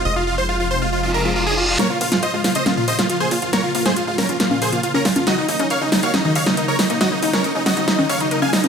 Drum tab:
HH |----------------|x-oxx-oxx-oxx-ox|x-oxx-oxx-oxx-ox|x-oxx-oxx-oxx-ox|
SD |----------------|o--o--o-o--o----|o--o--o-o-----o-|o-----o-o--o--o-|
CG |----------------|--------o-------|------o--o---o-o|--------o-------|

HH |x-oxx-oxx-oxx-ox|
SD |o--o--o-o-----o-|
CG |------o--o---o-o|